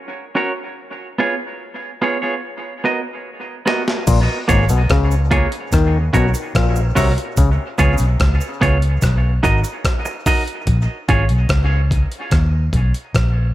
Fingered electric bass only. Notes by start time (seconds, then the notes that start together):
4.08 A#1
4.50 G#1
4.70 B1
4.90 C#2
5.73 D#2
6.14 B1
6.56 A#1
6.97 C2
7.38 C#2
7.80 C#2
8.00 B1
8.20 C#2
8.62 C#2
9.03 B1
9.44 G#1
10.67 A#1
11.10 G#1
11.30 B1
11.50 C#2
12.32 D#2
12.73 B1
13.15 A#1